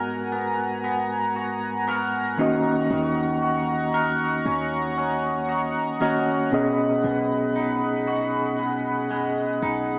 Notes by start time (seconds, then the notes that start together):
Already playing: G#2 G#3 B3 D#4 F#4 A#4 F#5 G#5 A#5
0.32 B3
0.84 B3
1.36 F#4
1.87 B3 F#4 A#4
2.37 D#3 A#3 C#4 F#4 D#5 C#6
2.91 D#2 D#3
3.42 F#4
3.94 A#4
4.46 D#2 C#4
4.98 C#4
5.49 F#4
6.00 D#3 A#3 C#4 F#4 A#4 D#5
6.51 B2 B3 C#4 G#4 D#5 B5
7.04 B1 B2
7.56 D#4
8.07 F#4
8.59 G#3
9.11 F#2 G#3
9.41 B1
9.63 B1 D#4